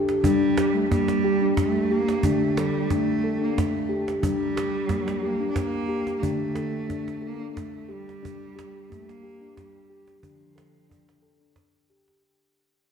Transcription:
0.00 0.20 D3 medium
0.00 0.24 G4 medium
0.09 cajon slap soft
0.22 0.75 G3 medium
0.22 2.20 G3 medium
0.22 0.58 D4 medium
0.22 cajon bass soft
0.43 cajon slap soft
0.57 0.91 G4 medium
0.57 cajon slap medium
0.74 0.89 A3 medium
0.74 cajon slap soft
0.90 1.53 G3 medium
0.90 1.24 A#3 medium
0.90 cajon bass soft
0.90 cajon slap soft
1.08 cajon slap soft
1.24 1.42 G4 medium
1.42 1.75 D4 medium
1.57 1.93 A3 medium
1.57 cajon bass soft
1.57 cajon slap soft
1.91 2.26 A#3 medium
1.91 2.24 G4 medium
1.91 cajon slap soft
2.08 cajon slap soft
2.23 4.19 D3 medium
2.23 2.60 A3 medium
2.23 2.57 D4 medium
2.23 cajon bass soft
2.57 2.93 G3 medium
2.57 2.91 A4 medium
2.57 cajon slap soft
2.90 3.45 A3 medium
2.90 3.24 D4 medium
2.90 cajon bass soft
2.90 cajon slap soft
3.24 3.41 A4 medium
3.41 3.60 A#3 medium
3.41 3.74 D4 medium
3.41 cajon slap soft
3.58 4.08 A3 medium
3.58 cajon bass soft
3.58 cajon slap soft
3.75 cajon slap soft
3.89 4.23 G4 medium
4.08 cajon slap soft
4.23 6.19 G3 medium
4.23 5.27 G3 medium
4.23 4.56 D4 medium
4.23 cajon bass soft
4.42 cajon slap soft
4.56 4.90 G4 medium
4.56 cajon slap medium
4.75 cajon slap soft
4.89 5.23 A#3 medium
4.89 cajon bass soft
4.89 cajon slap soft
5.08 cajon slap soft
5.23 5.50 A#3 medium
5.23 5.41 G4 medium
5.40 5.74 D4 medium
5.51 5.61 D4 medium
5.56 6.18 A#3 medium
5.56 cajon bass soft
5.56 cajon slap soft
5.89 6.22 G4 medium
5.89 cajon slap soft
6.07 cajon slap soft
6.18 6.25 A#3 medium
6.22 8.19 D3 medium
6.22 7.29 A3 medium
6.22 6.56 D4 medium
6.22 cajon bass soft
6.40 cajon slap soft
6.55 6.89 A4 soft
6.55 cajon slap soft
6.74 cajon slap soft
6.89 7.23 D4 medium
6.89 cajon bass soft
6.89 cajon slap soft
7.08 cajon slap soft
7.22 7.40 A4 soft
7.27 7.51 A#3 medium
7.40 7.73 D4 medium
7.51 7.58 A#3 medium
7.57 7.94 A3 medium
7.57 cajon bass soft
7.57 cajon slap soft
7.89 8.94 G3 medium
7.89 8.22 G4 medium
7.89 cajon slap soft
8.09 cajon slap soft
8.23 10.19 G3 medium
8.23 8.56 D4 medium
8.23 cajon bass soft
8.43 cajon slap soft
8.56 8.89 G4 medium
8.56 cajon slap soft
8.78 cajon slap soft
8.90 9.10 A3 medium
8.90 9.23 A#3 medium
8.90 cajon bass soft
8.90 cajon slap soft
9.08 9.61 A#3 medium
9.08 cajon slap soft
9.23 9.41 G4 medium
9.41 9.74 D4 medium
9.57 10.25 G3 medium
9.57 cajon bass soft
9.57 cajon slap soft
9.90 10.23 G4 medium
9.90 cajon slap soft
10.08 cajon slap soft
10.23 12.20 D3 medium
10.23 11.54 F3 medium
10.23 10.57 D4 medium
10.23 cajon bass soft
10.56 10.90 A4 medium
10.56 cajon slap soft
10.76 cajon slap soft
10.89 11.23 D4 medium
10.89 cajon bass soft
11.09 cajon slap soft
11.22 11.41 A4 medium
11.40 11.74 D4 medium
11.40 cajon slap soft
11.56 cajon bass soft
11.56 cajon slap soft
11.90 12.24 G4 medium
11.90 cajon slap soft
12.08 cajon slap soft

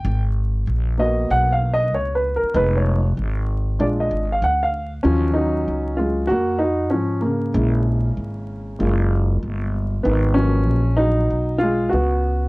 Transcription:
0.00 0.22 G5 loud
0.05 0.64 G#1 loud
0.67 1.27 A#1 medium
0.98 2.50 A#3 medium
0.98 2.51 B3 soft
0.98 2.51 F#4 medium
0.98 1.31 D#5 medium
1.30 1.93 B1 medium
1.30 1.52 F#5 loud
1.52 1.73 F5 medium
1.73 1.94 D#5 loud
1.93 2.40 C#2 medium
1.93 2.15 C#5 medium
2.15 2.36 B4 medium
2.36 2.56 A#4 medium
2.43 muted upright bass stroke soft
2.54 3.14 F1 loud
2.54 2.99 G#3 medium
2.54 2.99 B3 soft
2.54 2.99 D#4 medium
2.54 2.77 B4 loud
2.77 3.05 C#5 medium
3.17 3.77 G#1 medium
3.79 4.09 A#1 loud
3.79 4.24 G#3 medium
3.79 4.24 D4 medium
3.79 4.24 F4 medium
3.79 3.86 D5 medium
4.00 4.32 D#5 medium
4.11 4.41 G#1 medium
4.32 4.44 F5 medium
4.42 5.02 D2 loud
4.42 4.63 F#5 loud
4.63 4.91 F5 medium
5.03 5.64 D#2 loud
5.03 5.34 F3 medium
5.03 5.35 F#3 medium
5.03 5.94 C#4 medium
5.03 5.94 F4 medium
5.33 5.95 F#3 medium
5.33 5.99 D#4 medium
5.68 6.27 C#2 medium
5.98 6.26 F#3 soft
5.98 6.28 G#3 medium
5.98 6.27 C#4 soft
5.98 6.27 F4 medium
6.27 6.92 F2 medium
6.27 6.59 A#3 medium
6.27 6.57 F#4 loud
6.59 6.89 D#4 medium
6.59 6.91 F#4 medium
6.90 7.51 G#2 medium
6.90 7.22 F3 medium
6.90 7.20 C#4 medium
7.21 9.07 C#3 medium
7.21 8.78 A#3 medium
7.54 8.14 A#1 loud
7.54 8.75 G#3 medium
7.54 8.75 C#4 medium
7.54 8.76 E4 medium
8.17 8.77 G#1 medium
8.79 9.39 F#1 loud
8.79 10.00 G#3 medium
8.79 10.01 A#3 soft
8.79 10.01 F4 medium
9.43 10.02 G1 medium
10.03 10.68 G#1 loud
10.03 10.34 D#3 medium
10.03 10.34 B3 medium
10.34 10.95 F3 medium
10.34 10.80 F#3 medium
10.34 10.80 A#3 medium
10.34 10.80 B3 soft
10.34 10.99 C#4 loud
10.68 11.27 A#1 medium
10.97 11.58 F#3 medium
10.97 11.56 D#4 loud
11.31 11.90 B1 medium
11.58 11.92 F4 loud
11.62 11.91 G#3 medium
11.89 12.48 C#2 medium
11.89 12.46 B3 medium
11.89 12.48 F#4 medium

